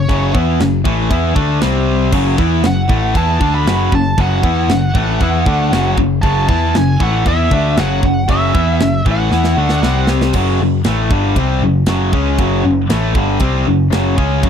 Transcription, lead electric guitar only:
0.00 0.33 C#5 medium
2.66 3.19 F#5 medium
3.17 3.54 A5 loud
3.55 3.91 B5 loud
3.95 4.20 A5 medium
4.21 5.95 F#5 medium
6.22 6.47 A5 loud
6.49 6.75 A5 medium
6.77 7.02 G#5 loud
7.02 7.25 F#5 loud
7.28 7.75 E5 loud
7.80 8.30 F#5 loud
8.30 9.02 E5 loud
9.11 10.07 F#5 medium

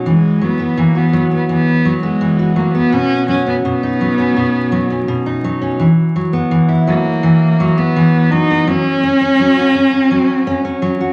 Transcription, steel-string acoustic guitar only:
0.00 0.13 B2 medium
0.00 0.41 F#3 medium
0.00 0.13 C#4 soft
0.00 0.13 D#4 soft
0.06 0.76 E3 medium
0.41 1.13 F#3 medium
0.59 1.31 B3 medium
0.78 1.48 E3 medium
0.95 2.39 F#4 medium
1.13 1.85 F#3 medium
1.31 2.02 B3 soft
1.49 2.20 E3 medium
1.85 2.56 F#3 medium
2.03 2.74 B3 medium
2.21 3.00 E3 medium
2.39 3.83 F#4 medium
2.56 3.28 F#3 medium
2.75 3.46 B3 medium
2.93 3.64 B2 medium
3.28 4.00 F#3 medium
3.46 4.17 C#4 medium
3.65 4.35 B2 medium
3.83 5.25 D#4 medium
4.01 4.72 F#3 medium
4.18 4.89 C#4 medium
4.37 5.07 B2 medium
4.72 5.44 F#3 medium
4.90 5.60 C#4 medium
5.08 5.87 B2 medium
5.26 5.87 D#4 medium
5.44 6.15 F#3 medium
5.61 5.87 C#4 medium
5.79 6.50 E3 medium
6.16 6.87 F#3 medium
6.33 7.05 B3 medium
6.51 7.22 E3 medium
6.68 8.12 E4 medium
6.87 7.60 F#3 medium
7.23 7.95 E3 medium
7.60 8.31 F#3 medium
7.78 8.49 B3 medium
7.96 8.75 E3 medium
8.32 8.67 F#3 medium
8.50 8.75 B3 medium
8.67 9.39 F#3 medium
9.03 9.20 C#4 medium
9.21 9.74 C#4 medium
9.39 10.11 F#3 medium
9.57 11.00 F#4 medium
9.75 9.92 C#4 medium
9.93 10.46 C#4 medium
10.11 10.82 F#3 medium
10.47 10.63 C#4 medium
10.65 11.13 C#4 medium
10.82 11.13 F#3 medium
11.01 11.13 F#4 medium

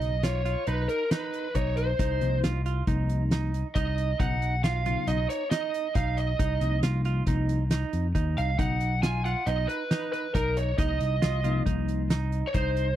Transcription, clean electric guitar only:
0.00 0.15 D#4 medium
0.24 0.41 F4 medium
0.45 0.63 F4 medium
0.68 1.03 D#4 medium
1.12 1.47 D#4 medium
1.56 1.91 D#4 medium
1.99 2.34 D#4 medium
2.44 2.61 F4 medium
2.66 2.83 F4 medium
2.88 3.23 D#4 medium
3.32 3.67 D#4 medium
3.76 4.11 D#4 medium
4.20 4.55 D#4 medium
4.64 4.81 F4 medium
4.86 5.03 F4 medium
5.08 5.43 D#4 medium
5.52 5.87 D#4 medium
5.96 6.31 D#4 medium
6.39 6.74 D#4 medium
6.83 7.01 F4 medium
7.05 7.23 F4 medium
7.28 7.63 D#4 medium
7.71 8.06 D#4 medium
8.15 8.50 D#4 medium
8.59 8.94 D#4 medium
9.03 9.21 F4 medium
9.25 9.43 F4 medium
9.47 9.82 D#4 medium
9.91 10.26 D#4 medium
10.35 10.70 D#4 medium
10.79 11.14 D#4 medium
11.22 11.40 F4 medium
11.44 11.62 F4 medium
11.66 12.01 D#4 medium
12.10 12.46 D#4 medium
12.54 12.90 D#4 medium

